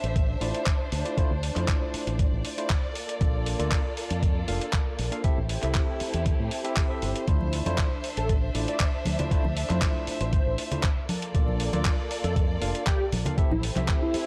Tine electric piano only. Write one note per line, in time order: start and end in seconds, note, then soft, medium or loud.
0.41 0.62 A3 medium
0.41 0.62 D4 medium
0.41 0.62 E4 medium
0.41 0.62 F4 medium
0.41 0.62 D5 medium
1.05 1.14 A3 medium
1.05 1.14 D4 medium
1.05 1.15 E4 medium
1.05 1.15 F4 medium
1.05 1.15 D5 medium
1.17 1.31 A3 medium
1.17 1.31 D4 medium
1.17 1.31 E4 medium
1.17 1.31 F4 medium
1.17 1.31 C5 loud
1.55 2.54 A3 medium
1.55 2.54 D4 medium
1.55 2.55 E4 medium
1.55 2.55 F4 medium
1.55 2.55 C5 medium
2.57 2.70 A3 medium
2.57 2.70 D4 medium
2.57 2.70 E4 medium
2.57 2.70 F4 medium
2.57 2.71 C5 medium
3.21 3.56 A#3 medium
3.21 3.56 D4 medium
3.21 3.57 F4 medium
3.21 3.57 A4 medium
3.21 3.57 D5 medium
3.59 3.80 A#3 medium
3.59 3.80 D4 medium
3.59 3.80 F4 medium
3.59 3.80 A4 medium
3.59 3.81 D5 loud
4.48 4.69 A#3 medium
4.48 4.69 D4 medium
4.48 4.69 F4 medium
4.48 4.69 A4 medium
4.48 4.69 F5 medium
5.12 5.21 A#3 medium
5.12 5.21 D4 medium
5.12 5.21 F4 medium
5.12 5.22 A4 medium
5.12 5.22 F5 medium
5.24 5.38 C4 loud
5.24 5.38 E4 medium
5.24 5.38 G4 medium
5.24 5.38 A4 medium
5.24 5.38 E5 loud
5.62 6.61 C4 medium
5.62 6.61 E4 medium
5.62 6.62 G4 medium
5.62 6.62 A4 medium
5.62 6.62 E5 medium
6.64 6.87 C4 medium
6.64 6.87 E4 medium
6.64 6.87 G4 medium
6.64 6.87 A4 medium
6.64 6.87 E5 medium
6.90 7.25 C4 medium
6.90 7.25 E4 medium
6.90 7.25 G4 medium
6.90 7.25 A4 medium
6.90 7.25 E5 medium
7.27 7.63 A3 medium
7.27 7.63 D4 medium
7.27 7.63 E4 medium
7.27 7.63 F4 medium
7.27 7.64 C5 medium
7.66 7.87 A3 medium
7.66 7.87 D4 medium
7.66 7.87 E4 medium
7.66 7.87 F4 medium
7.66 7.87 C5 loud
8.54 8.76 A3 medium
8.54 8.76 D4 medium
8.54 8.76 E4 medium
8.54 8.76 F4 medium
8.54 8.76 D5 medium
9.19 9.28 A3 medium
9.19 9.28 D4 medium
9.19 9.28 E4 medium
9.19 9.28 F4 medium
9.19 9.29 D5 medium
9.31 9.45 A3 medium
9.31 9.45 D4 medium
9.31 9.45 E4 medium
9.31 9.45 F4 medium
9.31 9.45 C5 loud
9.69 10.68 A3 medium
9.69 10.68 D4 medium
9.69 10.68 E4 medium
9.69 10.69 F4 medium
9.69 10.69 C5 medium
10.71 10.84 A3 medium
10.71 10.84 D4 medium
10.71 10.84 E4 medium
10.71 10.84 F4 medium
10.71 10.84 C5 medium
11.34 11.70 A#3 medium
11.34 11.70 D4 medium
11.34 11.70 F4 medium
11.34 11.70 A4 medium
11.34 11.70 D5 medium
11.73 11.94 A#3 medium
11.73 11.94 D4 medium
11.73 11.94 F4 medium
11.73 11.94 A4 medium
11.73 11.94 D5 loud
12.61 12.82 A#3 medium
12.61 12.82 D4 medium
12.61 12.83 F4 medium
12.61 12.83 A4 medium
12.61 12.83 F5 medium
13.25 13.35 A#3 medium
13.25 13.35 D4 medium
13.25 13.35 F4 medium
13.25 13.35 A4 medium
13.25 13.35 F5 medium
13.37 13.51 C4 medium
13.37 13.51 E4 medium
13.37 13.51 G4 medium
13.37 13.52 A4 medium
13.37 13.52 E5 loud
13.76 14.26 C4 medium
13.76 14.26 E4 medium
13.76 14.26 G4 medium
13.76 14.26 A4 medium
13.76 14.26 E5 medium